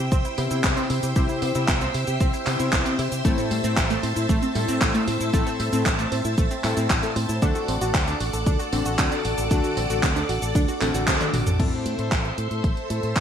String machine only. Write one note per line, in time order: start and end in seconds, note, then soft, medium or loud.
0.00 7.38 C5 medium
0.00 7.38 E5 medium
0.00 3.21 G5 medium
0.00 7.38 E6 loud
3.25 7.38 A5 medium
7.42 11.56 A4 medium
7.42 11.56 D5 medium
7.42 11.56 F#5 medium
7.42 11.56 D6 loud
11.60 13.20 A4 medium
11.60 13.20 C5 medium
11.60 13.20 E5 medium
11.60 13.20 C6 medium